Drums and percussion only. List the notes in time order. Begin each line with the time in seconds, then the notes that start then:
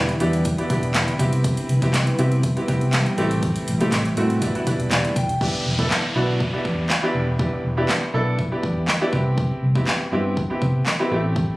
0.09 closed hi-hat
0.20 closed hi-hat
0.33 closed hi-hat
0.45 kick, closed hi-hat
0.58 closed hi-hat
0.70 kick, closed hi-hat
0.83 closed hi-hat
0.95 snare, clap, closed hi-hat
1.08 closed hi-hat
1.19 kick, closed hi-hat
1.33 closed hi-hat
1.44 kick, closed hi-hat
1.57 closed hi-hat
1.69 closed hi-hat
1.82 kick, closed hi-hat
1.94 snare, clap, closed hi-hat
2.07 closed hi-hat
2.19 closed hi-hat
2.32 closed hi-hat
2.43 kick, closed hi-hat
2.57 closed hi-hat
2.68 kick, closed hi-hat
2.81 closed hi-hat
2.93 snare, clap, closed hi-hat
3.06 closed hi-hat
3.18 closed hi-hat
3.31 closed hi-hat
3.43 kick, closed hi-hat
3.56 closed hi-hat
3.68 closed hi-hat
3.81 closed hi-hat
3.92 snare, clap, closed hi-hat
4.05 closed hi-hat
4.17 closed hi-hat
4.30 closed hi-hat
4.42 kick, closed hi-hat
4.55 closed hi-hat
4.67 kick, closed hi-hat
4.80 closed hi-hat
4.91 snare, clap, closed hi-hat
5.05 closed hi-hat
5.16 kick, closed hi-hat
5.29 closed hi-hat
5.41 kick
5.79 kick
5.91 snare, clap
6.40 kick
6.65 kick
6.90 snare, clap
7.39 kick
7.89 snare, clap
8.39 kick
8.63 kick
8.88 snare, clap
9.13 kick
9.38 kick
9.75 kick
9.87 snare, clap
10.37 kick
10.62 kick
10.86 snare, clap
11.36 kick